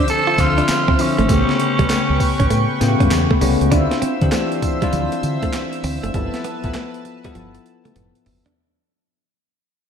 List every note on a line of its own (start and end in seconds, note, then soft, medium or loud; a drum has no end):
0.00 0.38 D3 medium
0.00 0.39 F3 medium
0.00 0.39 C4 medium
0.00 1.27 C5 medium
0.00 0.39 E5 medium
0.00 1.25 E5 medium
0.00 1.27 E6 loud
0.08 0.41 A4 loud
0.08 closed hi-hat medium
0.08 tambourine medium
0.27 0.34 F4 medium
0.38 0.60 D2 loud
0.38 0.97 D3 medium
0.38 0.97 F3 medium
0.38 0.97 C4 medium
0.38 1.02 F4 loud
0.38 0.97 E5 medium
0.38 muted clean electric guitar stroke soft
0.38 kick medium
0.38 snare medium
0.38 closed hi-hat medium
0.38 tambourine medium
0.58 0.64 D4 medium
0.58 closed hi-hat medium
0.68 muted fingered electric bass stroke medium
0.68 snare loud
0.68 clap loud
0.68 closed hi-hat medium
0.68 tambourine loud
0.88 0.96 D2 medium
0.88 0.95 C4 medium
0.88 kick loud
0.99 1.28 D3 medium
0.99 1.28 F3 medium
0.99 1.28 C4 medium
0.99 3.12 C#4 loud
0.99 1.29 E4 medium
0.99 muted clean electric guitar stroke soft
0.99 open hi-hat medium
0.99 tambourine medium
1.18 1.26 G#1 loud
1.18 1.25 A3 medium
1.18 closed hi-hat soft
1.29 1.43 A1 loud
1.29 2.46 C#3 medium
1.29 1.41 A3 medium
1.29 2.46 A3 medium
1.29 2.46 B3 medium
1.29 2.47 G4 medium
1.29 3.69 B4 medium
1.29 3.69 G5 medium
1.29 3.69 C#6 medium
1.29 kick loud
1.29 closed hi-hat medium
1.29 tambourine medium
1.49 snare medium
1.59 muted clean electric guitar stroke soft
1.59 closed hi-hat medium
1.79 1.87 C2 medium
1.79 1.85 G3 medium
1.79 kick medium
1.79 closed hi-hat soft
1.90 2.01 A3 medium
1.90 snare loud
1.90 clap medium
1.90 closed hi-hat medium
1.90 tambourine medium
2.10 2.17 C#2 medium
2.20 muted clean electric guitar stroke soft
2.20 kick medium
2.20 open hi-hat medium
2.20 tambourine medium
2.40 2.48 A1 medium
2.40 2.46 C#4 medium
2.40 kick medium
2.40 closed hi-hat medium
2.50 2.65 A2 loud
2.50 2.62 A3 medium
2.50 closed hi-hat medium
2.50 tambourine medium
2.81 2.95 A2 loud
2.81 3.39 C#3 medium
2.81 3.39 A3 medium
2.81 3.40 B3 medium
2.81 2.90 F4 medium
2.81 muted clean electric guitar stroke soft
2.81 snare medium
2.81 closed hi-hat medium
2.81 tambourine medium
2.88 3.43 G4 medium
3.00 3.08 G2 medium
3.00 3.07 C#4 medium
3.00 kick medium
3.00 closed hi-hat medium
3.11 3.25 E2 medium
3.11 muted clean electric guitar stroke soft
3.11 snare loud
3.11 clap medium
3.11 closed hi-hat medium
3.11 tambourine loud
3.31 3.37 A3 medium
3.31 kick loud
3.41 3.56 C2 medium
3.41 3.70 C#3 medium
3.41 3.53 G3 medium
3.41 3.71 A3 medium
3.41 3.71 B3 medium
3.41 3.71 C#4 medium
3.41 open hi-hat medium
3.41 tambourine medium
3.61 3.69 C#2 medium
3.61 closed hi-hat soft
3.71 3.86 D2 loud
3.71 4.19 C4 medium
3.71 3.83 D4 medium
3.71 4.19 D4 medium
3.71 4.18 E4 loud
3.71 4.19 F4 loud
3.71 6.12 C5 medium
3.71 8.53 E5 medium
3.71 8.53 E6 medium
3.71 kick loud
3.71 closed hi-hat medium
3.71 tambourine medium
3.91 muted clean electric guitar stroke soft
3.91 snare medium
3.91 closed hi-hat medium
4.02 4.13 C4 medium
4.02 muted fingered electric bass stroke soft
4.02 closed hi-hat medium
4.21 4.29 D3 loud
4.21 4.78 E3 medium
4.21 4.78 C4 medium
4.21 4.78 D4 medium
4.21 4.79 G4 medium
4.21 kick loud
4.21 closed hi-hat soft
4.32 4.44 A3 medium
4.32 snare loud
4.32 clap medium
4.32 closed hi-hat medium
4.32 tambourine medium
4.52 closed hi-hat soft
4.62 muted clean electric guitar stroke soft
4.62 kick medium
4.62 closed hi-hat medium
4.62 tambourine medium
4.82 4.88 G3 medium
4.82 5.95 C4 medium
4.82 5.96 D4 medium
4.82 5.95 E4 loud
4.82 5.96 F4 loud
4.82 kick medium
4.82 closed hi-hat medium
4.93 5.07 D2 loud
4.93 5.04 F3 medium
4.93 closed hi-hat medium
4.93 tambourine medium
5.12 muted clean electric guitar stroke soft
5.12 closed hi-hat medium
5.23 5.37 D3 loud
5.23 closed hi-hat medium
5.23 tambourine medium
5.43 5.49 A3 medium
5.43 kick medium
5.43 closed hi-hat medium
5.53 muted clean electric guitar stroke soft
5.53 snare loud
5.53 clap medium
5.53 closed hi-hat medium
5.53 tambourine loud
5.73 closed hi-hat medium
5.84 5.98 D2 loud
5.84 5.95 C4 medium
5.84 open hi-hat medium
5.84 tambourine medium
6.03 6.11 F#1 loud
6.03 6.10 A3 medium
6.03 closed hi-hat soft
6.14 6.28 G1 loud
6.14 6.61 F3 medium
6.14 6.26 G3 medium
6.14 6.61 B3 medium
6.14 6.61 E4 medium
6.14 6.61 A4 medium
6.14 8.54 B4 medium
6.14 8.54 A5 medium
6.14 kick loud
6.14 closed hi-hat medium
6.34 muted clean electric guitar stroke soft
6.34 snare medium
6.34 closed hi-hat medium
6.44 6.56 B3 medium
6.44 closed hi-hat medium
6.64 6.72 A1 loud
6.64 7.20 F3 medium
6.64 7.21 B3 medium
6.64 7.21 E4 medium
6.64 7.21 A4 loud
6.64 kick medium
6.64 closed hi-hat soft
6.74 6.86 A3 medium
6.74 snare loud
6.74 clap medium
6.74 closed hi-hat medium
6.94 closed hi-hat soft
7.05 muted clean electric guitar stroke soft
7.05 closed hi-hat medium
7.24 8.38 F3 loud
7.24 7.31 G3 medium
7.24 8.38 B3 medium
7.24 8.38 E4 medium
7.24 8.38 A4 loud
7.24 kick medium
7.24 closed hi-hat medium
7.35 7.57 G1 loud
7.35 7.47 F3 medium
7.35 closed hi-hat medium
7.35 high tom medium
7.55 muted clean electric guitar stroke soft
7.55 closed hi-hat medium
7.55 high tom medium
7.66 closed hi-hat medium
7.85 7.92 A3 medium
7.85 closed hi-hat medium
7.85 mid tom medium
7.96 8.10 F1 medium
7.96 8.07 B3 medium
7.96 closed hi-hat medium
7.96 mid tom medium
8.15 closed hi-hat medium
8.26 8.40 F#1 medium
8.26 muted clean electric guitar stroke soft
8.26 floor tom loud
8.26 open hi-hat medium
8.46 8.52 D4 medium
8.46 floor tom medium